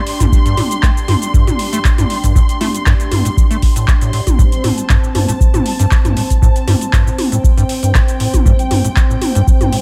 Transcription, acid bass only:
0.20 0.27 G2 loud
0.46 0.55 G2 medium
0.57 0.62 A2 medium
0.83 0.90 A3 loud
1.08 1.16 G2 loud
1.34 1.45 G2 medium
1.47 1.51 A2 medium
1.73 1.79 A3 loud
1.98 2.05 G2 loud
2.24 2.33 G2 medium
2.35 2.40 A2 medium
2.61 2.68 A3 loud
2.86 2.94 G2 loud
3.12 3.23 G2 medium
3.25 3.29 A2 medium
3.51 3.57 A3 loud
3.76 3.86 A2 medium
4.01 4.11 A2 medium
4.13 4.21 A2 medium
4.39 4.43 A2 medium
4.64 4.72 A2 medium
4.89 4.97 G2 loud
5.15 5.26 G2 medium
5.29 5.33 A2 medium
5.54 5.60 A2 medium
5.79 5.86 G2 loud
6.05 6.15 G2 medium
6.17 6.21 A2 medium
6.42 6.50 A2 medium
6.68 6.75 G2 loud
6.93 7.04 G2 medium
7.06 7.10 A2 medium
7.32 7.38 A2 medium
7.57 7.64 G2 loud
7.83 7.93 G2 medium
7.95 7.99 A2 medium
8.20 8.28 A2 medium
8.46 8.53 G2 loud
8.71 8.82 G2 medium
8.85 8.88 A2 medium
9.10 9.16 A2 medium
9.35 9.42 G2 loud
9.61 9.70 G2 medium
9.73 9.77 A2 medium

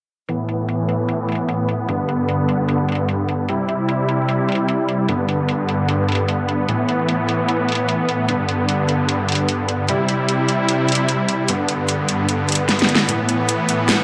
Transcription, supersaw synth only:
0.29 1.87 A2 medium
0.29 1.87 E3 medium
0.29 3.45 B3 medium
1.89 3.47 G2 medium
1.89 3.47 D3 medium
3.49 5.07 C3 medium
3.49 5.07 G3 medium
3.49 5.07 E4 medium
5.09 6.67 G2 medium
5.09 6.67 D3 medium
5.09 9.85 B3 medium
6.69 8.27 A2 medium
6.69 8.27 E3 medium
8.29 9.87 G2 medium
8.29 9.87 D3 medium
9.89 11.47 C3 medium
9.89 11.47 G3 medium
9.89 11.47 E4 medium
11.49 13.07 G2 medium
11.49 13.07 D3 medium
11.49 14.04 B3 medium
13.09 14.04 A2 medium
13.09 14.04 E3 medium

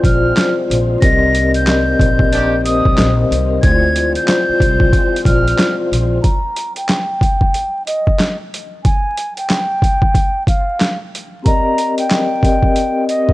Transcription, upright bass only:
0.04 0.30 A#1 medium
0.70 0.96 A#1 medium
1.02 1.96 C2 loud
2.00 2.81 A#1 medium
2.86 2.95 C2 medium
2.98 3.24 A#1 loud
3.31 3.57 C2 medium
3.63 4.15 D2 loud
4.49 muted upright bass stroke medium
4.61 4.87 C2 loud
5.26 5.52 A#1 medium
5.92 6.18 A#1 medium

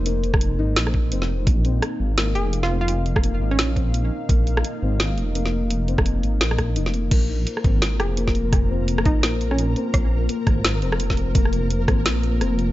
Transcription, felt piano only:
0.00 0.06 A#3 medium
0.00 0.59 D#4 loud
0.06 0.57 A#3 medium
0.59 1.10 D#4 loud
1.12 1.29 C4 medium
1.65 2.16 C4 medium
2.18 2.69 A#3 medium
2.71 3.22 C4 medium
3.23 3.75 A#3 medium
3.76 4.28 C4 medium
4.29 4.81 A#3 medium
4.82 5.34 C4 medium
5.35 5.87 A#3 medium
5.88 6.39 C4 medium
6.41 6.57 A#3 medium
6.76 6.92 D#4 medium
6.94 7.05 A#3 medium
7.12 7.63 A#3 medium
7.65 8.16 C4 medium
8.17 8.69 A#3 medium
8.70 9.22 C4 medium
9.23 9.75 A#3 medium
9.76 10.28 C4 medium
10.29 10.81 A#3 medium
10.82 11.34 C4 medium
11.35 11.87 A#3 medium
11.88 12.39 C4 medium
12.41 12.58 C4 medium

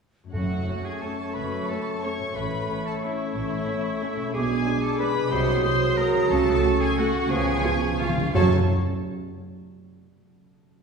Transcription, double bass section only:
0.34 0.62 F#1 soft
1.36 1.64 F#1 soft
2.36 2.63 A1 medium
3.35 3.62 A1 medium
4.34 4.61 B1 medium
5.32 5.59 C2 medium
6.30 6.57 C#2 medium
7.31 7.58 C#2 medium
8.34 8.53 F#1 medium

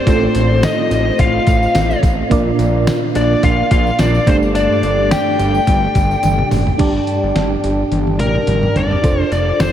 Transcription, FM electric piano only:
0.06 0.87 A2 medium
0.06 2.26 A3 medium
0.06 2.27 C4 medium
0.06 2.27 F4 medium
0.06 2.27 A4 medium
0.06 2.28 C5 medium
2.30 3.11 A#2 medium
2.30 4.23 A#3 medium
2.30 4.23 D4 medium
2.30 4.23 F4 medium
2.30 4.24 A#4 medium
2.30 4.24 D5 medium
4.26 5.07 G2 medium
4.26 6.47 A3 medium
4.26 6.47 D4 medium
4.26 6.48 G4 medium
4.26 6.48 A4 medium
4.26 6.48 D5 medium
6.78 7.59 G2 medium
6.78 8.99 D4 medium
6.78 9.00 G4 medium
6.78 9.00 D5 medium
6.78 9.00 A5 medium
9.02 9.72 D4 medium
9.02 9.72 F4 medium
9.02 9.72 A4 medium
9.02 9.72 C5 medium

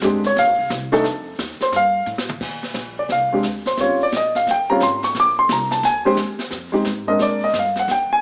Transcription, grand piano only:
0.02 0.22 G#3 medium
0.02 0.23 C4 medium
0.02 0.23 D4 medium
0.02 0.23 G4 medium
0.27 0.37 C#5 medium
0.39 0.69 F5 loud
0.92 1.03 A3 medium
0.92 1.03 D4 medium
0.92 1.04 D#4 medium
0.92 1.04 A4 loud
1.62 1.73 C5 medium
1.76 2.07 F5 loud
2.99 3.10 D5 medium
3.12 3.43 F5 medium
3.33 3.43 G#3 medium
3.33 3.43 C4 medium
3.33 3.44 D4 medium
3.33 3.44 G4 medium
3.67 3.78 C5 medium
3.79 3.99 G3 medium
3.79 3.99 C4 soft
3.79 3.99 C#4 soft
3.79 4.00 F4 medium
3.79 4.01 C#5 medium
4.03 4.13 D5 medium
4.17 4.36 D#5 medium
4.36 4.47 F5 medium
4.51 4.70 G5 medium
4.70 4.80 G3 medium
4.70 4.81 C4 medium
4.70 4.81 C#4 medium
4.70 4.81 F4 medium
4.70 4.81 A#5 medium
4.83 5.03 C6 medium
5.04 5.15 C#6 medium
5.20 5.39 D6 loud
5.39 5.50 C6 medium
5.53 5.72 A#5 medium
5.72 5.83 A5 medium
5.85 6.06 G#5 medium
6.05 6.16 G#3 medium
6.05 6.16 C4 medium
6.05 6.17 D4 medium
6.05 6.17 G4 medium
6.05 6.14 C5 medium
6.72 6.84 G#3 medium
6.72 6.85 C4 medium
6.72 6.85 D#4 medium
6.72 6.85 G4 medium
7.07 7.52 G#3 medium
7.07 7.52 C4 medium
7.07 7.53 D4 medium
7.07 7.53 A#4 medium
7.07 7.20 D#5 medium
7.22 7.43 D5 medium
7.44 7.55 D#5 medium
7.59 7.78 F5 medium
7.79 7.90 F#5 medium
7.91 8.12 G5 medium
8.13 8.21 G#5 medium

